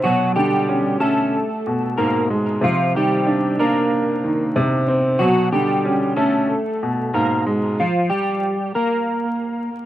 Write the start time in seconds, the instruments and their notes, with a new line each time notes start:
0.04 grand piano B2, clean electric guitar F#3 F#4
0.36 grand piano D3, clean electric guitar G3 G4
0.69 grand piano C#4
1.00 clean electric guitar A3 A4, grand piano C#4
1.67 grand piano B2
1.97 grand piano G#2, clean electric guitar A#3 A#4
2.30 grand piano G#3
2.61 grand piano C3, clean electric guitar F3 F4
2.95 grand piano D#3, clean electric guitar G3 G4
3.27 grand piano D4
3.59 clean electric guitar A#3 A#4, grand piano D4
4.24 grand piano D#3
4.56 grand piano C3
4.88 grand piano C4
5.19 grand piano B2, clean electric guitar F#3 F#4
5.52 grand piano D3, clean electric guitar G3 G4
5.85 grand piano C#4
6.16 clean electric guitar A3 A4, grand piano C#4
6.83 grand piano B2
7.14 grand piano G#2, clean electric guitar A#3 A#4
7.46 grand piano G#3
7.80 clean electric guitar F3 F4
8.10 clean electric guitar G3 G4
8.75 clean electric guitar A#3 A#4